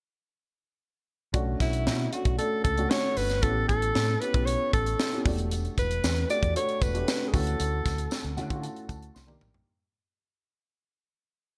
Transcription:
1.33 B1 A3 C#4 D4 F#4, kick, closed hi-hat
1.60 B1 E4, kick, snare, closed hi-hat
1.73 closed hi-hat
1.87 B2, snare
2.11 A3 C#4 D4 F#4, closed hi-hat
2.25 B1, kick, closed hi-hat
2.38 A3 C#4 D4 A4, closed hi-hat
2.64 C#2 A4, kick, closed hi-hat
2.78 A3 C#4 D4 F#4, closed hi-hat
2.90 C#5, snare
3.17 G1 B4, open hi-hat
3.30 snare, closed hi-hat
3.42 A1 B3 C#4 E4 F#4 A4, kick, closed hi-hat
3.49 G4
3.68 A1 A4, kick, closed hi-hat
3.82 closed hi-hat
3.95 A2, snare
4.20 B3 C#4 E4 G4 B4, closed hi-hat
4.34 B1 B3 C#4 E4 G4, kick, closed hi-hat
4.46 C#5, closed hi-hat
4.73 A1 A4, kick, closed hi-hat
4.86 closed hi-hat
5.00 snare
5.12 B3 C#4 E4 G4, closed hi-hat
5.25 E1 A3 D4 F#4 G4, kick, open hi-hat
5.38 closed hi-hat
5.51 closed hi-hat, tambourine
5.65 closed hi-hat
5.78 E1 B4, kick, closed hi-hat, tambourine
5.91 closed hi-hat
6.04 E2, snare, tambourine
6.16 closed hi-hat
6.29 A3 D4 F#4 G4 D5, closed hi-hat, tambourine
6.43 E2, kick, closed hi-hat
6.55 A3 D4 F#4 A4 C#5, closed hi-hat
6.69 closed hi-hat
6.82 E1 B4, kick, closed hi-hat, tambourine
6.94 A3 D4 F#4 G4, closed hi-hat
7.08 snare, tambourine
7.28 G#4
7.33 D2 A3 C#4 E4 F#4 A4, kick, open hi-hat, tambourine
7.47 closed hi-hat
7.60 D2, closed hi-hat, tambourine
7.86 D2, kick, snare, closed hi-hat, tambourine
7.98 closed hi-hat
8.11 snare, tambourine
8.24 D2, closed hi-hat
8.36 D3 A3 C#4 E4 F#4 F#5, closed hi-hat, tambourine
8.48 A3 C#4 E4 F4, kick, closed hi-hat
8.56 F#4
8.62 A5, closed hi-hat, tambourine
8.76 closed hi-hat
8.89 D2 A5, kick, closed hi-hat, tambourine
9.03 closed hi-hat
9.15 C2 C6, snare, tambourine
9.27 A#3 D4 D#4 G4, high tom
9.41 A#1, mid tom, tambourine
9.54 floor tom

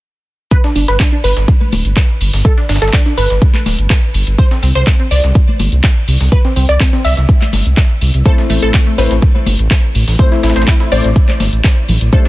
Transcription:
0.51 B4, kick, closed hi-hat, shaker
0.64 D4, snare
0.76 G1 D4, open hi-hat, shaker
0.88 G1 B4, snare, closed hi-hat
1.00 D4, kick, snare, clap, closed hi-hat, shaker
1.12 D4
1.24 G1 B4, open hi-hat
1.37 G1, snare, closed hi-hat
1.48 kick, closed hi-hat, shaker
1.61 high conga
1.72 D1, open hi-hat, high conga, shaker
1.85 G1, closed hi-hat
1.97 kick, snare, clap, closed hi-hat, shaker
2.21 G1, open hi-hat, shaker
2.33 G1, snare, open hi-hat
2.45 A4, kick, shaker
2.58 D4, snare
2.69 G1 D4, snare, open hi-hat, shaker
2.76 snare, shaker
2.82 G1 A4, snare, closed hi-hat, shaker
2.88 snare, shaker
2.93 D4, kick, snare, clap, closed hi-hat, shaker
3.06 D4, snare
3.18 G1 B4, open hi-hat, shaker
3.30 G1, snare, closed hi-hat
3.42 kick, closed hi-hat, shaker
3.54 clap, high conga
3.66 D1, snare, open hi-hat, high conga, shaker
3.79 G1, closed hi-hat
3.90 kick, snare, clap, closed hi-hat, shaker
4.14 G1, open hi-hat, shaker
4.27 G1, closed hi-hat
4.38 C5, kick, closed hi-hat, shaker
4.51 C4, snare
4.63 C2 C4, open hi-hat, shaker
4.75 C2 C5, snare, closed hi-hat
4.87 C4, kick, snare, clap, closed hi-hat, shaker
5.00 C4
5.11 C2 D5, open hi-hat
5.24 C2, snare, closed hi-hat
5.35 kick, closed hi-hat, shaker
5.49 high conga
5.59 G1, open hi-hat, high conga, shaker
5.72 C2, closed hi-hat
5.84 kick, snare, clap, closed hi-hat, shaker
6.08 C2, open hi-hat, shaker
6.21 C2, snare, open hi-hat
6.32 B4, kick, closed hi-hat, shaker
6.45 C4, snare
6.56 C2 C4, open hi-hat, shaker
6.69 C2 D5, closed hi-hat
6.80 C4, kick, snare, clap, closed hi-hat, shaker
6.93 C4, snare
7.05 C2 E5, open hi-hat, shaker
7.17 C2, snare, closed hi-hat
7.29 kick, closed hi-hat, shaker
7.41 clap, high conga
7.53 G1, snare, open hi-hat, high conga, shaker
7.66 C2, closed hi-hat
7.77 kick, snare, clap, closed hi-hat, shaker
8.01 C2, open hi-hat, shaker
8.14 C2, closed hi-hat
8.26 A3 C4 E4 A4 C5, kick, closed hi-hat, shaker
8.38 A3, snare
8.50 A1 A3, open hi-hat, shaker
8.62 A1 A4, snare, closed hi-hat
8.74 A3, kick, snare, clap, closed hi-hat, shaker
8.87 A3
8.98 A1 A3 C4 E4 B4 C5, open hi-hat
9.11 A1, snare, closed hi-hat
9.22 kick, closed hi-hat, shaker
9.35 high conga
9.46 G1, open hi-hat, high conga, shaker
9.59 A1, closed hi-hat
9.71 kick, snare, clap, closed hi-hat, shaker
9.95 A1, open hi-hat, shaker
10.08 A1, snare, open hi-hat
10.19 A3 C4 E4 C5, kick, closed hi-hat, shaker
10.32 E4, snare
10.43 A1 E4, snare, open hi-hat, shaker
10.50 snare, shaker
10.56 A1 C5, snare, closed hi-hat, shaker
10.62 snare, shaker
10.68 E4, kick, snare, clap, closed hi-hat, shaker
10.80 E4, snare
10.92 A1 A3 C4 E4 C5 D5, open hi-hat, shaker
11.04 A1, snare, closed hi-hat
11.16 kick, closed hi-hat, shaker
11.28 clap, high conga
11.40 G1, snare, open hi-hat, high conga, shaker
11.53 A1, closed hi-hat
11.64 kick, snare, clap, closed hi-hat, shaker
11.88 A1, open hi-hat, low conga, shaker
12.01 A1, closed hi-hat
12.13 A3 D4 G4 A4 C5, kick, closed hi-hat, shaker
12.25 snare

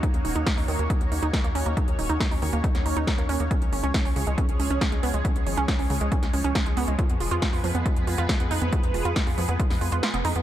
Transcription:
Already playing: A#3 C#4 D#4 F#4 C#5
0.03 D#4, kick, closed hi-hat
0.14 D#2, closed hi-hat
0.25 D#1 D#4, open hi-hat
0.36 D#2 D#4, closed hi-hat
0.46 D#4, kick, snare, closed hi-hat
0.57 D#2 D#4, open hi-hat
0.68 D#2 D#3, open hi-hat
0.79 D#2 A#3, closed hi-hat
0.90 D#4, kick, closed hi-hat
1.01 D#2, closed hi-hat
1.12 D#2 D#4, open hi-hat
1.23 D#2 D#4, closed hi-hat
1.33 D#4, kick, snare, closed hi-hat
1.44 D#2 A#3, closed hi-hat
1.55 D#2 C#4, open hi-hat
1.66 D#2 A#3, closed hi-hat
1.77 D#4, kick, closed hi-hat
1.88 D#2, closed hi-hat
1.99 D#1 D#4, open hi-hat
2.10 D#2 D#4, closed hi-hat
2.20 D#4, kick, snare, closed hi-hat
2.31 D#2 D#4, open hi-hat
2.42 D#2 D#3, open hi-hat
2.53 D#2 A#3, closed hi-hat
2.64 D#4, kick, closed hi-hat
2.75 D#2, snare, closed hi-hat
2.86 D#2 D#4, open hi-hat
2.96 D#2 D#4, closed hi-hat
3.07 D#4, kick, snare, closed hi-hat
3.18 D#2 A#3, closed hi-hat
3.29 D#2 C#4, open hi-hat
3.40 D#2 A#3, closed hi-hat
3.51 F3 G#3 C#4 G#4, kick, closed hi-hat
3.62 C#2, closed hi-hat
3.73 G#1 C#4, open hi-hat
3.83 C#2 C#4, closed hi-hat
3.94 C#4, kick, snare, closed hi-hat
4.05 C#2 C#4, open hi-hat
4.16 C#2 C#3, open hi-hat
4.27 C#2 G#3, closed hi-hat
4.38 C#4, kick, closed hi-hat
4.49 C#2, closed hi-hat
4.60 C#2 C#4, open hi-hat
4.70 C#2 C#4, closed hi-hat
4.81 C#4, kick, snare, closed hi-hat
4.92 C#2 G#3, closed hi-hat
5.03 C#2 B3, open hi-hat
5.14 C#2 G#3, closed hi-hat
5.25 C#4, kick, closed hi-hat
5.36 C#2, closed hi-hat
5.47 G#1 C#4, open hi-hat
5.57 C#2 C#4, closed hi-hat
5.68 C#4, kick, snare, closed hi-hat
5.79 C#2 C#4, open hi-hat
5.90 C#2 C#3, open hi-hat
6.01 C#2 G#3, closed hi-hat
6.12 C#4, kick, closed hi-hat
6.23 C#2, snare, closed hi-hat
6.33 C#2 C#4, open hi-hat
6.44 C#2 C#4, closed hi-hat
6.55 C#4, kick, snare, closed hi-hat
6.66 C#2 G#3, closed hi-hat
6.77 C#2 B3, open hi-hat
6.88 C#2 G#3, closed hi-hat
6.99 B3 F4 G#4 B4, kick, closed hi-hat
7.10 F2, closed hi-hat
7.20 F1 F4, open hi-hat
7.31 F2 F4, closed hi-hat
7.42 F4, kick, snare, closed hi-hat
7.53 F2 F4, open hi-hat
7.64 F2 F3, open hi-hat
7.75 F2 B3, closed hi-hat
7.86 F4, kick, closed hi-hat
7.96 F2, closed hi-hat
8.07 F2 F4, open hi-hat
8.18 F2 F4, closed hi-hat
8.29 F4, kick, snare, closed hi-hat
8.40 F2 B3, closed hi-hat
8.51 F2 D#4, open hi-hat
8.62 F2 B3, closed hi-hat
8.73 F4, kick, closed hi-hat
8.83 F2, closed hi-hat
8.94 F1 F4, open hi-hat
9.05 F2 F4, closed hi-hat
9.16 F4, kick, snare, closed hi-hat
9.27 F2 F4, open hi-hat
9.38 F2 F3, open hi-hat
9.49 F2 B3, closed hi-hat
9.59 F4, kick, closed hi-hat
9.70 F2, snare, open hi-hat
9.81 F2 F4, open hi-hat
9.92 F2 F4, closed hi-hat
10.03 F4, snare, closed hi-hat
10.14 F1 B3, closed hi-hat
10.25 F2 D#4, open hi-hat
10.36 F2 B3, closed hi-hat

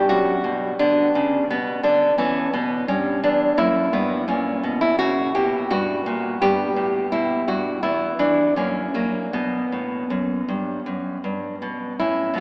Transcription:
Already playing: D4
0.09 F#2 F#4
0.44 B2
0.79 D3 B3 D4
1.15 C#3
1.50 B2 B3
1.83 D3 D4
2.18 E3 B3 C#4
2.53 B2 B3
2.88 G2 C#4
3.23 E2 D4
3.57 F#2 A#3 E4
3.93 G2 B3
4.28 A#2 C#4
4.63 B2
4.81 E4
4.99 C#3 F#4
5.35 B2 G4
5.70 G2 F#4
6.06 A#2
6.42 G2 B3 G4
6.76 A2
7.12 B2 E4
7.48 G2 F#4
7.83 E2 B3 E4
8.19 E3 D4
8.56 F#2 A#3 C#4
8.94 F#3 A#3
9.33 B2 B3
9.72 A2
10.10 F#2
10.48 G2
10.86 F#2
11.24 G2
11.62 B2
12.00 A2 C#4 E4
12.34 B2 F#3 B3

